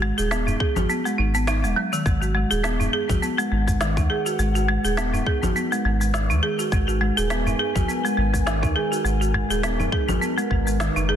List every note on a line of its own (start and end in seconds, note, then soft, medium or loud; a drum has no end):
0.00 0.12 G#1 loud
0.00 0.18 G#3 loud
0.18 0.56 D#1 loud
0.18 0.30 G#4 loud
0.18 cabasa medium
0.31 0.46 B3 loud
0.31 snare medium
0.31 cabasa medium
0.47 0.59 D#4 medium
0.47 udu medium
0.47 cabasa soft
0.60 0.76 G#4 medium
0.60 kick loud
0.76 0.87 G#1 loud
0.76 0.84 F#4 medium
0.76 low conga medium
0.76 cabasa medium
0.89 1.05 B3 medium
0.89 cabasa medium
1.05 1.18 G#3 medium
1.05 cabasa soft
1.18 1.66 G#1 loud
1.18 1.33 D#4 medium
1.34 1.46 B3 loud
1.34 cabasa medium
1.47 1.57 D#4 medium
1.47 snare loud
1.47 cabasa medium
1.64 1.74 D#1 medium
1.64 1.76 G#3 medium
1.64 cabasa soft
1.76 1.91 F#3 loud
1.93 2.05 D#3 loud
1.93 cabasa medium
2.06 2.45 G#1 loud
2.06 2.21 G#3 medium
2.06 11.16 G#3 medium
2.06 kick loud
2.06 cabasa medium
2.22 2.34 F#4 medium
2.22 cabasa soft
2.32 2.50 G#3 loud
2.32 11.16 D#4 medium
2.51 2.88 D#1 loud
2.51 2.63 G#4 loud
2.51 cabasa medium
2.61 2.78 B3 loud
2.61 11.16 A#4 medium
2.61 snare loud
2.61 cabasa medium
2.80 2.92 D#4 medium
2.80 udu loud
2.80 cabasa soft
2.89 6.74 F#5 medium
2.93 3.09 G#4 loud
2.93 11.16 B4 medium
3.09 3.19 G#1 loud
3.09 3.17 F#4 medium
3.09 kick loud
3.09 low conga medium
3.09 cabasa medium
3.23 3.38 B3 medium
3.23 cabasa medium
3.38 3.50 G#3 loud
3.38 cabasa soft
3.52 3.99 G#1 loud
3.52 3.66 G#3 medium
3.68 3.80 G#3 medium
3.68 kick medium
3.68 udu medium
3.68 cabasa medium
3.81 3.90 D#3 medium
3.81 snare medium
3.81 cabasa medium
3.97 4.07 D#2 loud
3.97 4.09 D#4 medium
3.97 kick loud
3.97 cabasa soft
4.10 4.25 G#4 loud
4.26 4.33 F#4 medium
4.26 cabasa medium
4.39 4.78 G#1 loud
4.39 4.54 G#3 medium
4.39 cabasa medium
4.55 4.67 F#4 medium
4.55 cabasa soft
4.69 4.84 G#3 loud
4.85 5.21 D#1 loud
4.85 4.97 G#4 medium
4.85 cabasa medium
4.97 5.12 B3 loud
4.97 snare medium
4.97 cabasa medium
5.13 5.26 D#4 medium
5.13 udu medium
5.13 cabasa soft
5.26 5.42 G#4 loud
5.26 kick loud
5.43 5.53 G#1 loud
5.43 5.50 F#4 medium
5.43 low conga medium
5.43 cabasa medium
5.56 5.71 B3 medium
5.56 cabasa medium
5.72 5.84 G#3 loud
5.72 cabasa soft
5.85 6.32 G#1 loud
5.85 5.99 G#3 medium
6.01 6.13 G#3 medium
6.01 cabasa medium
6.14 6.23 D#3 medium
6.14 snare medium
6.14 cabasa medium
6.30 6.40 D#2 loud
6.30 6.42 D#4 medium
6.30 cabasa soft
6.43 6.58 G#4 loud
6.58 6.66 F#4 medium
6.58 11.16 G#5 medium
6.58 cabasa medium
6.72 7.11 G#1 loud
6.72 6.87 G#3 medium
6.72 kick loud
6.72 cabasa medium
6.88 7.00 F#4 medium
6.88 cabasa soft
7.01 7.16 G#3 loud
7.17 7.55 D#1 loud
7.17 7.30 G#4 loud
7.17 cabasa medium
7.30 7.45 B3 loud
7.30 snare loud
7.30 cabasa medium
7.46 7.59 D#4 medium
7.46 udu medium
7.46 cabasa soft
7.59 7.75 G#4 loud
7.75 7.85 G#1 loud
7.75 7.83 F#4 medium
7.75 kick loud
7.75 low conga medium
7.75 cabasa medium
7.89 8.04 B3 medium
7.89 cabasa medium
8.05 8.16 G#3 loud
8.05 cabasa soft
8.17 8.64 G#1 loud
8.17 8.32 G#3 medium
8.33 8.46 G#3 medium
8.33 kick medium
8.33 udu medium
8.33 cabasa medium
8.47 8.56 D#3 loud
8.47 snare medium
8.47 cabasa soft
8.63 8.73 D#2 loud
8.63 8.75 D#4 medium
8.63 kick loud
8.63 cabasa soft
8.76 8.91 G#4 loud
8.92 8.99 F#4 medium
8.92 cabasa medium
9.05 9.44 G#1 loud
9.05 9.20 G#3 medium
9.05 cabasa medium
9.21 9.33 F#4 medium
9.21 cabasa soft
9.34 9.50 G#3 loud
9.34 udu medium
9.50 9.87 D#1 medium
9.50 9.63 G#4 loud
9.50 cabasa medium
9.63 9.78 B3 loud
9.63 snare loud
9.63 cabasa medium
9.80 9.92 D#4 medium
9.80 low conga medium
9.80 udu loud
9.80 cabasa soft
9.92 10.08 G#4 loud
9.92 kick loud
10.08 10.18 G#1 loud
10.08 10.16 F#4 medium
10.08 low conga medium
10.08 cabasa medium
10.22 10.37 B3 medium
10.22 cabasa medium
10.38 10.49 G#3 loud
10.38 cabasa soft
10.50 10.90 G#1 loud
10.50 10.65 G#3 medium
10.50 kick medium
10.67 10.79 G#3 medium
10.67 cabasa medium
10.80 10.89 D#3 loud
10.80 snare loud
10.80 cabasa medium
10.96 11.16 F#1 medium
10.96 11.08 D#4 medium
10.96 cabasa soft
11.09 11.16 G#4 loud